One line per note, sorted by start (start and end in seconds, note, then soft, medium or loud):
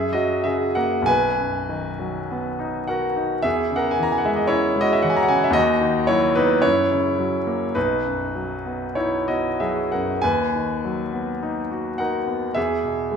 0.00 1.04 F#2 medium
0.00 0.13 G#4 medium
0.00 0.14 E5 medium
0.13 0.65 F#3 soft
0.13 0.44 F#4 medium
0.13 0.46 D#5 medium
0.44 0.96 C#3 soft
0.44 0.75 G#4 medium
0.44 0.77 E5 medium
0.75 1.09 A#3 soft
0.75 1.06 A#4 medium
0.75 1.08 F#5 medium
1.02 3.38 B1 medium
1.02 2.88 G#5 loud
1.07 2.85 B4 medium
1.38 1.89 F#2 soft
1.69 2.19 D#3 soft
1.99 2.48 F#3 soft
2.31 2.78 B3 soft
2.59 3.06 D#4 medium
2.87 3.34 F#4 medium
2.87 3.41 A#4 medium
2.87 3.44 F#5 medium
3.16 3.44 D#4 soft
3.42 5.50 E2 medium
3.42 3.75 G#4 medium
3.42 3.76 E5 medium
3.71 4.14 C#3 medium
3.76 3.91 A#4 medium
3.76 3.92 F#5 medium
3.91 4.03 G#5 medium
3.99 4.41 E3 soft
3.99 4.12 A#5 medium
4.12 4.20 G#5 medium
4.18 4.28 F#5 medium
4.25 4.67 G#3 soft
4.25 4.38 E5 medium
4.36 4.49 D#5 medium
4.47 4.92 C#4 medium
4.47 4.79 E4 medium
4.47 4.80 C#5 medium
4.76 5.18 G#3 medium
4.81 4.93 F#4 medium
4.81 4.93 D#5 medium
4.93 5.03 E5 medium
5.02 5.45 E3 medium
5.02 5.10 F#5 medium
5.10 5.17 G#5 medium
5.17 5.23 A#5 medium
5.23 5.30 F#5 medium
5.28 5.55 C#3 medium
5.28 5.37 G#5 medium
5.37 5.45 F#5 medium
5.44 5.54 E5 medium
5.50 6.58 D#2 medium
5.50 6.08 D#5 loud
5.55 6.05 F#4 medium
5.81 6.25 D#3 medium
6.07 6.53 F#3 medium
6.07 6.34 E4 medium
6.07 6.35 C#5 medium
6.35 6.64 B3 medium
6.35 6.62 D#4 medium
6.35 6.63 B4 medium
6.62 7.72 F#2 medium
6.62 7.71 E4 medium
6.62 7.75 C#5 medium
6.92 7.36 C#3 medium
7.19 7.64 F#3 medium
7.47 7.76 A#3 soft
7.75 10.19 B1 medium
7.75 8.93 D#4 medium
7.75 8.96 B4 medium
8.05 8.53 F#2 soft
8.35 8.84 F#3 soft
8.66 9.16 B3 soft
8.95 9.48 D#4 soft
8.95 9.26 E4 medium
8.95 9.28 C#5 medium
9.28 9.79 B3 soft
9.28 9.58 F#4 soft
9.28 9.60 D#5 medium
9.60 10.10 F#3 soft
9.60 9.90 G#4 medium
9.60 9.91 E5 medium
9.92 10.23 F#2 soft
9.92 10.21 A#4 soft
9.92 10.22 F#5 medium
10.22 12.53 D#2 medium
10.22 11.96 B4 medium
10.22 11.99 G#5 medium
10.55 11.02 D#3 soft
10.85 11.31 F#3 soft
11.13 11.59 B3 soft
11.43 11.88 D#4 soft
11.71 12.17 F#4 soft
11.98 12.46 D#4 soft
11.98 12.53 A#4 soft
11.98 12.56 F#5 medium
12.27 12.56 B3 soft
12.54 13.17 E2 medium
12.54 13.17 G#4 medium
12.54 13.17 E5 medium
12.83 13.17 B2 soft
13.12 13.17 G#3 soft